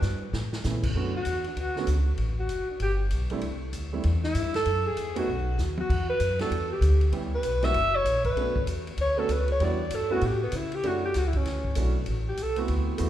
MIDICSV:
0, 0, Header, 1, 6, 480
1, 0, Start_track
1, 0, Key_signature, 2, "minor"
1, 0, Tempo, 308960
1, 1471, Time_signature, 4, 2, 24, 8
1, 20347, End_track
2, 0, Start_track
2, 0, Title_t, "Alto saxophone"
2, 0, Program_c, 0, 65
2, 1804, Note_on_c, 0, 66, 79
2, 2235, Note_off_c, 0, 66, 0
2, 2286, Note_on_c, 0, 62, 47
2, 2485, Note_on_c, 0, 66, 78
2, 2509, Note_off_c, 0, 62, 0
2, 2758, Note_off_c, 0, 66, 0
2, 3718, Note_on_c, 0, 66, 72
2, 4152, Note_off_c, 0, 66, 0
2, 4202, Note_on_c, 0, 62, 48
2, 4285, Note_off_c, 0, 62, 0
2, 4385, Note_on_c, 0, 67, 90
2, 4555, Note_off_c, 0, 67, 0
2, 6593, Note_on_c, 0, 64, 93
2, 7031, Note_off_c, 0, 64, 0
2, 7079, Note_on_c, 0, 69, 94
2, 7557, Note_on_c, 0, 68, 84
2, 7580, Note_off_c, 0, 69, 0
2, 8062, Note_on_c, 0, 66, 82
2, 8086, Note_off_c, 0, 68, 0
2, 8700, Note_off_c, 0, 66, 0
2, 9016, Note_on_c, 0, 66, 81
2, 9443, Note_off_c, 0, 66, 0
2, 9467, Note_on_c, 0, 71, 92
2, 9908, Note_off_c, 0, 71, 0
2, 9957, Note_on_c, 0, 69, 87
2, 10393, Note_off_c, 0, 69, 0
2, 10443, Note_on_c, 0, 67, 83
2, 11045, Note_off_c, 0, 67, 0
2, 11412, Note_on_c, 0, 71, 91
2, 11881, Note_on_c, 0, 76, 107
2, 11904, Note_off_c, 0, 71, 0
2, 12361, Note_on_c, 0, 73, 98
2, 12384, Note_off_c, 0, 76, 0
2, 12812, Note_off_c, 0, 73, 0
2, 12822, Note_on_c, 0, 71, 86
2, 13433, Note_off_c, 0, 71, 0
2, 14000, Note_on_c, 0, 73, 92
2, 14275, Note_on_c, 0, 69, 89
2, 14298, Note_off_c, 0, 73, 0
2, 14478, Note_on_c, 0, 71, 84
2, 14502, Note_off_c, 0, 69, 0
2, 14755, Note_off_c, 0, 71, 0
2, 14786, Note_on_c, 0, 73, 90
2, 14970, Note_on_c, 0, 74, 91
2, 14994, Note_off_c, 0, 73, 0
2, 15462, Note_on_c, 0, 69, 87
2, 15485, Note_off_c, 0, 74, 0
2, 15706, Note_off_c, 0, 69, 0
2, 15716, Note_on_c, 0, 66, 84
2, 15921, Note_on_c, 0, 67, 86
2, 15944, Note_off_c, 0, 66, 0
2, 16195, Note_off_c, 0, 67, 0
2, 16205, Note_on_c, 0, 59, 67
2, 16409, Note_on_c, 0, 64, 75
2, 16433, Note_off_c, 0, 59, 0
2, 16693, Note_on_c, 0, 67, 101
2, 16717, Note_off_c, 0, 64, 0
2, 16881, Note_on_c, 0, 66, 83
2, 16904, Note_off_c, 0, 67, 0
2, 17155, Note_off_c, 0, 66, 0
2, 17170, Note_on_c, 0, 67, 98
2, 17367, Note_on_c, 0, 66, 75
2, 17390, Note_off_c, 0, 67, 0
2, 17523, Note_on_c, 0, 64, 73
2, 17546, Note_off_c, 0, 66, 0
2, 17666, Note_on_c, 0, 61, 73
2, 17689, Note_off_c, 0, 64, 0
2, 18387, Note_off_c, 0, 61, 0
2, 19085, Note_on_c, 0, 67, 79
2, 19304, Note_on_c, 0, 69, 91
2, 19327, Note_off_c, 0, 67, 0
2, 19565, Note_off_c, 0, 69, 0
2, 20347, End_track
3, 0, Start_track
3, 0, Title_t, "Grand piano"
3, 0, Program_c, 1, 0
3, 1001, Note_on_c, 1, 52, 50
3, 1013, Note_on_c, 1, 57, 48
3, 1016, Note_on_c, 1, 59, 47
3, 1020, Note_on_c, 1, 61, 48
3, 1021, Note_on_c, 1, 64, 56
3, 1266, Note_off_c, 1, 52, 0
3, 1271, Note_off_c, 1, 57, 0
3, 1273, Note_off_c, 1, 59, 0
3, 1275, Note_off_c, 1, 61, 0
3, 1276, Note_off_c, 1, 64, 0
3, 1478, Note_on_c, 1, 50, 64
3, 1484, Note_on_c, 1, 57, 61
3, 1493, Note_on_c, 1, 59, 59
3, 1493, Note_on_c, 1, 61, 58
3, 1505, Note_on_c, 1, 66, 72
3, 1744, Note_off_c, 1, 50, 0
3, 1747, Note_off_c, 1, 57, 0
3, 1752, Note_off_c, 1, 59, 0
3, 1752, Note_off_c, 1, 61, 0
3, 1758, Note_off_c, 1, 66, 0
3, 2743, Note_on_c, 1, 50, 69
3, 2752, Note_on_c, 1, 57, 66
3, 2757, Note_on_c, 1, 59, 61
3, 2763, Note_on_c, 1, 61, 66
3, 2771, Note_on_c, 1, 66, 74
3, 2900, Note_off_c, 1, 50, 0
3, 2905, Note_off_c, 1, 57, 0
3, 2908, Note_off_c, 1, 59, 0
3, 2910, Note_off_c, 1, 61, 0
3, 2914, Note_off_c, 1, 66, 0
3, 5134, Note_on_c, 1, 55, 70
3, 5143, Note_on_c, 1, 57, 65
3, 5149, Note_on_c, 1, 60, 62
3, 5155, Note_on_c, 1, 62, 67
3, 5171, Note_on_c, 1, 64, 77
3, 5297, Note_off_c, 1, 55, 0
3, 5301, Note_off_c, 1, 57, 0
3, 5304, Note_off_c, 1, 60, 0
3, 5307, Note_off_c, 1, 62, 0
3, 5315, Note_off_c, 1, 64, 0
3, 6098, Note_on_c, 1, 55, 61
3, 6104, Note_on_c, 1, 60, 53
3, 6107, Note_on_c, 1, 57, 56
3, 6113, Note_on_c, 1, 62, 51
3, 6119, Note_on_c, 1, 64, 67
3, 6259, Note_off_c, 1, 55, 0
3, 6262, Note_off_c, 1, 60, 0
3, 6263, Note_off_c, 1, 57, 0
3, 6267, Note_off_c, 1, 62, 0
3, 6269, Note_off_c, 1, 64, 0
3, 8003, Note_on_c, 1, 57, 73
3, 8008, Note_on_c, 1, 61, 68
3, 8013, Note_on_c, 1, 59, 71
3, 8020, Note_on_c, 1, 66, 82
3, 8028, Note_on_c, 1, 63, 70
3, 8172, Note_off_c, 1, 57, 0
3, 8174, Note_off_c, 1, 61, 0
3, 8177, Note_off_c, 1, 59, 0
3, 8180, Note_off_c, 1, 66, 0
3, 8185, Note_off_c, 1, 63, 0
3, 9925, Note_on_c, 1, 55, 60
3, 9940, Note_on_c, 1, 59, 57
3, 9945, Note_on_c, 1, 64, 58
3, 9947, Note_on_c, 1, 62, 59
3, 9954, Note_on_c, 1, 66, 70
3, 10093, Note_off_c, 1, 55, 0
3, 10100, Note_off_c, 1, 59, 0
3, 10103, Note_off_c, 1, 64, 0
3, 10104, Note_off_c, 1, 62, 0
3, 10107, Note_off_c, 1, 66, 0
3, 11058, Note_on_c, 1, 55, 59
3, 11063, Note_on_c, 1, 59, 54
3, 11070, Note_on_c, 1, 61, 53
3, 11075, Note_on_c, 1, 64, 57
3, 11080, Note_on_c, 1, 67, 69
3, 11336, Note_off_c, 1, 55, 0
3, 11338, Note_off_c, 1, 59, 0
3, 11342, Note_off_c, 1, 61, 0
3, 11344, Note_off_c, 1, 64, 0
3, 11347, Note_off_c, 1, 67, 0
3, 11838, Note_on_c, 1, 55, 72
3, 11842, Note_on_c, 1, 58, 71
3, 11849, Note_on_c, 1, 61, 66
3, 11855, Note_on_c, 1, 64, 67
3, 11864, Note_on_c, 1, 66, 87
3, 12009, Note_off_c, 1, 55, 0
3, 12011, Note_off_c, 1, 58, 0
3, 12015, Note_off_c, 1, 61, 0
3, 12018, Note_off_c, 1, 64, 0
3, 12022, Note_off_c, 1, 66, 0
3, 12999, Note_on_c, 1, 59, 55
3, 13001, Note_on_c, 1, 57, 66
3, 13001, Note_on_c, 1, 61, 59
3, 13017, Note_on_c, 1, 62, 55
3, 13024, Note_on_c, 1, 66, 69
3, 13266, Note_off_c, 1, 59, 0
3, 13267, Note_off_c, 1, 57, 0
3, 13267, Note_off_c, 1, 61, 0
3, 13275, Note_off_c, 1, 62, 0
3, 13279, Note_off_c, 1, 66, 0
3, 14246, Note_on_c, 1, 59, 64
3, 14248, Note_on_c, 1, 57, 73
3, 14263, Note_on_c, 1, 61, 70
3, 14266, Note_on_c, 1, 62, 66
3, 14272, Note_on_c, 1, 66, 76
3, 14412, Note_off_c, 1, 59, 0
3, 14414, Note_off_c, 1, 57, 0
3, 14421, Note_off_c, 1, 61, 0
3, 14423, Note_off_c, 1, 62, 0
3, 14425, Note_off_c, 1, 66, 0
3, 14911, Note_on_c, 1, 55, 68
3, 14922, Note_on_c, 1, 59, 63
3, 14934, Note_on_c, 1, 62, 61
3, 14937, Note_on_c, 1, 64, 63
3, 14945, Note_on_c, 1, 66, 75
3, 15181, Note_off_c, 1, 55, 0
3, 15187, Note_off_c, 1, 59, 0
3, 15193, Note_off_c, 1, 62, 0
3, 15194, Note_off_c, 1, 64, 0
3, 15198, Note_off_c, 1, 66, 0
3, 15695, Note_on_c, 1, 57, 78
3, 15701, Note_on_c, 1, 59, 76
3, 15708, Note_on_c, 1, 64, 70
3, 15714, Note_on_c, 1, 61, 72
3, 15728, Note_on_c, 1, 66, 91
3, 15856, Note_off_c, 1, 57, 0
3, 15860, Note_off_c, 1, 59, 0
3, 15863, Note_off_c, 1, 64, 0
3, 15866, Note_off_c, 1, 61, 0
3, 15873, Note_off_c, 1, 66, 0
3, 16834, Note_on_c, 1, 57, 69
3, 16840, Note_on_c, 1, 61, 61
3, 16841, Note_on_c, 1, 62, 65
3, 16850, Note_on_c, 1, 64, 60
3, 16853, Note_on_c, 1, 66, 78
3, 17102, Note_off_c, 1, 57, 0
3, 17105, Note_off_c, 1, 61, 0
3, 17105, Note_off_c, 1, 62, 0
3, 17110, Note_off_c, 1, 64, 0
3, 17111, Note_off_c, 1, 66, 0
3, 18269, Note_on_c, 1, 57, 62
3, 18269, Note_on_c, 1, 61, 56
3, 18288, Note_on_c, 1, 62, 55
3, 18288, Note_on_c, 1, 64, 54
3, 18294, Note_on_c, 1, 66, 67
3, 18539, Note_off_c, 1, 57, 0
3, 18539, Note_off_c, 1, 61, 0
3, 18548, Note_off_c, 1, 62, 0
3, 18548, Note_off_c, 1, 64, 0
3, 18551, Note_off_c, 1, 66, 0
3, 19521, Note_on_c, 1, 57, 65
3, 19530, Note_on_c, 1, 59, 61
3, 19534, Note_on_c, 1, 60, 60
3, 19550, Note_on_c, 1, 64, 61
3, 19557, Note_on_c, 1, 66, 74
3, 20141, Note_off_c, 1, 57, 0
3, 20149, Note_off_c, 1, 59, 0
3, 20152, Note_off_c, 1, 60, 0
3, 20160, Note_off_c, 1, 64, 0
3, 20164, Note_on_c, 1, 57, 69
3, 20167, Note_off_c, 1, 66, 0
3, 20172, Note_on_c, 1, 59, 64
3, 20175, Note_on_c, 1, 60, 62
3, 20183, Note_on_c, 1, 64, 61
3, 20198, Note_on_c, 1, 66, 76
3, 20347, Note_off_c, 1, 57, 0
3, 20347, Note_off_c, 1, 59, 0
3, 20347, Note_off_c, 1, 60, 0
3, 20347, Note_off_c, 1, 64, 0
3, 20347, Note_off_c, 1, 66, 0
3, 20347, End_track
4, 0, Start_track
4, 0, Title_t, "Upright bass"
4, 0, Program_c, 2, 32
4, 30, Note_on_c, 2, 43, 84
4, 496, Note_off_c, 2, 43, 0
4, 511, Note_on_c, 2, 45, 85
4, 977, Note_off_c, 2, 45, 0
4, 1003, Note_on_c, 2, 46, 91
4, 1454, Note_off_c, 2, 46, 0
4, 1463, Note_on_c, 2, 42, 76
4, 1933, Note_off_c, 2, 42, 0
4, 1954, Note_on_c, 2, 40, 78
4, 2419, Note_off_c, 2, 40, 0
4, 2427, Note_on_c, 2, 38, 82
4, 2892, Note_off_c, 2, 38, 0
4, 2901, Note_on_c, 2, 37, 88
4, 3373, Note_off_c, 2, 37, 0
4, 3379, Note_on_c, 2, 33, 77
4, 3852, Note_off_c, 2, 33, 0
4, 3859, Note_on_c, 2, 29, 78
4, 4144, Note_off_c, 2, 29, 0
4, 4346, Note_on_c, 2, 31, 85
4, 4815, Note_off_c, 2, 31, 0
4, 4832, Note_on_c, 2, 35, 95
4, 5299, Note_off_c, 2, 35, 0
4, 5312, Note_on_c, 2, 36, 83
4, 5779, Note_off_c, 2, 36, 0
4, 5791, Note_on_c, 2, 38, 89
4, 6259, Note_off_c, 2, 38, 0
4, 6281, Note_on_c, 2, 40, 88
4, 6744, Note_off_c, 2, 40, 0
4, 6753, Note_on_c, 2, 43, 93
4, 7220, Note_off_c, 2, 43, 0
4, 7235, Note_on_c, 2, 42, 78
4, 7701, Note_off_c, 2, 42, 0
4, 7708, Note_on_c, 2, 40, 80
4, 8178, Note_off_c, 2, 40, 0
4, 8189, Note_on_c, 2, 35, 88
4, 8658, Note_off_c, 2, 35, 0
4, 8668, Note_on_c, 2, 39, 88
4, 9137, Note_off_c, 2, 39, 0
4, 9157, Note_on_c, 2, 40, 77
4, 9622, Note_off_c, 2, 40, 0
4, 9632, Note_on_c, 2, 42, 85
4, 10099, Note_off_c, 2, 42, 0
4, 10107, Note_on_c, 2, 40, 86
4, 10570, Note_off_c, 2, 40, 0
4, 10579, Note_on_c, 2, 38, 92
4, 11046, Note_off_c, 2, 38, 0
4, 11056, Note_on_c, 2, 37, 82
4, 11526, Note_off_c, 2, 37, 0
4, 11536, Note_on_c, 2, 35, 80
4, 12000, Note_off_c, 2, 35, 0
4, 12009, Note_on_c, 2, 30, 85
4, 12487, Note_off_c, 2, 30, 0
4, 12500, Note_on_c, 2, 34, 89
4, 12962, Note_off_c, 2, 34, 0
4, 12971, Note_on_c, 2, 35, 79
4, 13448, Note_off_c, 2, 35, 0
4, 13465, Note_on_c, 2, 40, 85
4, 13929, Note_off_c, 2, 40, 0
4, 13938, Note_on_c, 2, 38, 89
4, 14411, Note_off_c, 2, 38, 0
4, 14422, Note_on_c, 2, 37, 95
4, 14893, Note_off_c, 2, 37, 0
4, 14913, Note_on_c, 2, 40, 81
4, 15378, Note_off_c, 2, 40, 0
4, 15392, Note_on_c, 2, 43, 84
4, 15858, Note_off_c, 2, 43, 0
4, 15874, Note_on_c, 2, 45, 87
4, 16339, Note_off_c, 2, 45, 0
4, 16350, Note_on_c, 2, 49, 93
4, 16817, Note_off_c, 2, 49, 0
4, 16828, Note_on_c, 2, 42, 74
4, 17295, Note_off_c, 2, 42, 0
4, 17320, Note_on_c, 2, 37, 84
4, 17781, Note_off_c, 2, 37, 0
4, 17809, Note_on_c, 2, 38, 85
4, 18257, Note_off_c, 2, 38, 0
4, 18266, Note_on_c, 2, 35, 93
4, 18734, Note_off_c, 2, 35, 0
4, 18759, Note_on_c, 2, 33, 79
4, 19220, Note_off_c, 2, 33, 0
4, 19235, Note_on_c, 2, 36, 83
4, 19698, Note_off_c, 2, 36, 0
4, 19706, Note_on_c, 2, 38, 90
4, 20173, Note_off_c, 2, 38, 0
4, 20193, Note_on_c, 2, 40, 89
4, 20347, Note_off_c, 2, 40, 0
4, 20347, End_track
5, 0, Start_track
5, 0, Title_t, "Muted upright bass strokes"
5, 4161, Note_on_c, 9, 29, 39
5, 4316, Note_off_c, 9, 29, 0
5, 20347, End_track
6, 0, Start_track
6, 0, Title_t, "Drums"
6, 28, Note_on_c, 9, 44, 56
6, 35, Note_on_c, 9, 38, 45
6, 183, Note_off_c, 9, 44, 0
6, 191, Note_off_c, 9, 38, 0
6, 517, Note_on_c, 9, 38, 76
6, 673, Note_off_c, 9, 38, 0
6, 818, Note_on_c, 9, 38, 71
6, 973, Note_off_c, 9, 38, 0
6, 988, Note_on_c, 9, 44, 60
6, 996, Note_on_c, 9, 38, 56
6, 1143, Note_off_c, 9, 44, 0
6, 1151, Note_off_c, 9, 38, 0
6, 1295, Note_on_c, 9, 36, 71
6, 1295, Note_on_c, 9, 49, 78
6, 1450, Note_off_c, 9, 36, 0
6, 1451, Note_off_c, 9, 49, 0
6, 1939, Note_on_c, 9, 44, 54
6, 1939, Note_on_c, 9, 51, 61
6, 2095, Note_off_c, 9, 44, 0
6, 2095, Note_off_c, 9, 51, 0
6, 2242, Note_on_c, 9, 51, 43
6, 2397, Note_off_c, 9, 51, 0
6, 2433, Note_on_c, 9, 51, 58
6, 2589, Note_off_c, 9, 51, 0
6, 2736, Note_on_c, 9, 38, 32
6, 2891, Note_off_c, 9, 38, 0
6, 2902, Note_on_c, 9, 44, 52
6, 2902, Note_on_c, 9, 51, 68
6, 3057, Note_off_c, 9, 44, 0
6, 3057, Note_off_c, 9, 51, 0
6, 3379, Note_on_c, 9, 51, 48
6, 3535, Note_off_c, 9, 51, 0
6, 3866, Note_on_c, 9, 44, 53
6, 3866, Note_on_c, 9, 51, 58
6, 4021, Note_off_c, 9, 44, 0
6, 4021, Note_off_c, 9, 51, 0
6, 4345, Note_on_c, 9, 51, 61
6, 4501, Note_off_c, 9, 51, 0
6, 4824, Note_on_c, 9, 44, 49
6, 4824, Note_on_c, 9, 51, 61
6, 4979, Note_off_c, 9, 44, 0
6, 4979, Note_off_c, 9, 51, 0
6, 5123, Note_on_c, 9, 51, 43
6, 5278, Note_off_c, 9, 51, 0
6, 5304, Note_on_c, 9, 51, 52
6, 5460, Note_off_c, 9, 51, 0
6, 5792, Note_on_c, 9, 44, 59
6, 5792, Note_on_c, 9, 51, 64
6, 5947, Note_off_c, 9, 44, 0
6, 5947, Note_off_c, 9, 51, 0
6, 6269, Note_on_c, 9, 51, 59
6, 6424, Note_off_c, 9, 51, 0
6, 6580, Note_on_c, 9, 38, 41
6, 6735, Note_off_c, 9, 38, 0
6, 6752, Note_on_c, 9, 44, 60
6, 6752, Note_on_c, 9, 51, 68
6, 6907, Note_off_c, 9, 44, 0
6, 6907, Note_off_c, 9, 51, 0
6, 7054, Note_on_c, 9, 51, 41
6, 7062, Note_on_c, 9, 38, 54
6, 7209, Note_off_c, 9, 51, 0
6, 7217, Note_off_c, 9, 38, 0
6, 7232, Note_on_c, 9, 51, 61
6, 7387, Note_off_c, 9, 51, 0
6, 7717, Note_on_c, 9, 44, 49
6, 7717, Note_on_c, 9, 51, 60
6, 7872, Note_off_c, 9, 44, 0
6, 7872, Note_off_c, 9, 51, 0
6, 8018, Note_on_c, 9, 51, 64
6, 8173, Note_off_c, 9, 51, 0
6, 8674, Note_on_c, 9, 44, 54
6, 8682, Note_on_c, 9, 38, 44
6, 8829, Note_off_c, 9, 44, 0
6, 8837, Note_off_c, 9, 38, 0
6, 8971, Note_on_c, 9, 48, 61
6, 9126, Note_off_c, 9, 48, 0
6, 9161, Note_on_c, 9, 36, 68
6, 9167, Note_on_c, 9, 49, 66
6, 9316, Note_off_c, 9, 36, 0
6, 9322, Note_off_c, 9, 49, 0
6, 9628, Note_on_c, 9, 44, 53
6, 9628, Note_on_c, 9, 51, 65
6, 9783, Note_off_c, 9, 44, 0
6, 9783, Note_off_c, 9, 51, 0
6, 9931, Note_on_c, 9, 51, 44
6, 9939, Note_on_c, 9, 38, 41
6, 10086, Note_off_c, 9, 51, 0
6, 10094, Note_off_c, 9, 38, 0
6, 10123, Note_on_c, 9, 51, 62
6, 10278, Note_off_c, 9, 51, 0
6, 10596, Note_on_c, 9, 44, 55
6, 10596, Note_on_c, 9, 51, 66
6, 10752, Note_off_c, 9, 44, 0
6, 10752, Note_off_c, 9, 51, 0
6, 10891, Note_on_c, 9, 51, 44
6, 11046, Note_off_c, 9, 51, 0
6, 11069, Note_on_c, 9, 51, 59
6, 11224, Note_off_c, 9, 51, 0
6, 11543, Note_on_c, 9, 44, 59
6, 11543, Note_on_c, 9, 51, 62
6, 11698, Note_off_c, 9, 44, 0
6, 11698, Note_off_c, 9, 51, 0
6, 11846, Note_on_c, 9, 51, 45
6, 11853, Note_on_c, 9, 38, 48
6, 12001, Note_off_c, 9, 51, 0
6, 12009, Note_off_c, 9, 38, 0
6, 12028, Note_on_c, 9, 51, 59
6, 12183, Note_off_c, 9, 51, 0
6, 12514, Note_on_c, 9, 44, 63
6, 12514, Note_on_c, 9, 51, 68
6, 12669, Note_off_c, 9, 44, 0
6, 12669, Note_off_c, 9, 51, 0
6, 12809, Note_on_c, 9, 51, 42
6, 12813, Note_on_c, 9, 36, 53
6, 12965, Note_off_c, 9, 51, 0
6, 12968, Note_off_c, 9, 36, 0
6, 13002, Note_on_c, 9, 51, 55
6, 13157, Note_off_c, 9, 51, 0
6, 13294, Note_on_c, 9, 36, 69
6, 13450, Note_off_c, 9, 36, 0
6, 13470, Note_on_c, 9, 44, 52
6, 13470, Note_on_c, 9, 51, 65
6, 13626, Note_off_c, 9, 44, 0
6, 13626, Note_off_c, 9, 51, 0
6, 13782, Note_on_c, 9, 51, 44
6, 13938, Note_off_c, 9, 51, 0
6, 13945, Note_on_c, 9, 51, 66
6, 14101, Note_off_c, 9, 51, 0
6, 14431, Note_on_c, 9, 44, 50
6, 14431, Note_on_c, 9, 51, 68
6, 14586, Note_off_c, 9, 44, 0
6, 14586, Note_off_c, 9, 51, 0
6, 14725, Note_on_c, 9, 51, 46
6, 14881, Note_off_c, 9, 51, 0
6, 14916, Note_on_c, 9, 51, 56
6, 15072, Note_off_c, 9, 51, 0
6, 15388, Note_on_c, 9, 44, 57
6, 15388, Note_on_c, 9, 51, 70
6, 15544, Note_off_c, 9, 44, 0
6, 15544, Note_off_c, 9, 51, 0
6, 15867, Note_on_c, 9, 51, 64
6, 16023, Note_off_c, 9, 51, 0
6, 16339, Note_on_c, 9, 44, 61
6, 16339, Note_on_c, 9, 51, 68
6, 16495, Note_off_c, 9, 44, 0
6, 16495, Note_off_c, 9, 51, 0
6, 16650, Note_on_c, 9, 51, 44
6, 16805, Note_off_c, 9, 51, 0
6, 16832, Note_on_c, 9, 51, 58
6, 16987, Note_off_c, 9, 51, 0
6, 17309, Note_on_c, 9, 44, 58
6, 17309, Note_on_c, 9, 51, 60
6, 17317, Note_on_c, 9, 38, 37
6, 17464, Note_off_c, 9, 44, 0
6, 17464, Note_off_c, 9, 51, 0
6, 17472, Note_off_c, 9, 38, 0
6, 17602, Note_on_c, 9, 51, 42
6, 17611, Note_on_c, 9, 36, 52
6, 17757, Note_off_c, 9, 51, 0
6, 17767, Note_off_c, 9, 36, 0
6, 17796, Note_on_c, 9, 51, 56
6, 17804, Note_on_c, 9, 38, 40
6, 17952, Note_off_c, 9, 51, 0
6, 17959, Note_off_c, 9, 38, 0
6, 18092, Note_on_c, 9, 36, 52
6, 18247, Note_off_c, 9, 36, 0
6, 18257, Note_on_c, 9, 44, 60
6, 18257, Note_on_c, 9, 51, 70
6, 18413, Note_off_c, 9, 44, 0
6, 18413, Note_off_c, 9, 51, 0
6, 18734, Note_on_c, 9, 51, 57
6, 18890, Note_off_c, 9, 51, 0
6, 19224, Note_on_c, 9, 44, 47
6, 19224, Note_on_c, 9, 51, 67
6, 19379, Note_off_c, 9, 44, 0
6, 19379, Note_off_c, 9, 51, 0
6, 19515, Note_on_c, 9, 51, 47
6, 19670, Note_off_c, 9, 51, 0
6, 19700, Note_on_c, 9, 51, 58
6, 19855, Note_off_c, 9, 51, 0
6, 20166, Note_on_c, 9, 44, 58
6, 20166, Note_on_c, 9, 51, 69
6, 20322, Note_off_c, 9, 44, 0
6, 20322, Note_off_c, 9, 51, 0
6, 20347, End_track
0, 0, End_of_file